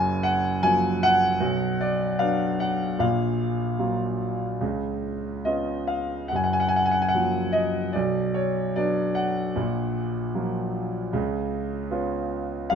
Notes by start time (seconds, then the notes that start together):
Already playing: F#1 F#2 G#5
0.23 F#5
0.62 F3 F#3 A#3 G#5
1.03 F#5
1.40 B1 B2
1.81 D5
2.19 F#3 B3 D4 F5
2.60 F#5
2.99 A#1 A#2 F5
3.79 F#3 A#3 F4
4.61 C#2 C#3
5.45 B3 C#4 F4 D#5
5.87 F5
6.28 F#1 F#2 F#5
6.36 G#5
6.44 F#5
6.53 G#5
6.60 F#5
6.68 G#5
6.76 F#5
6.86 G#5
6.91 F#5
7.02 G#5
7.08 F#5
7.14 F3 F#3 A#3
7.52 D#5
7.93 B1 B2 D5
8.34 C#5
8.76 F#3 B3 D4 D5
9.15 F#5
9.56 A#1 A#2
10.35 F3 F#3 A#3
11.13 C#2 C#3
11.90 B3 C#4 F4
12.70 F#1 F#2 F5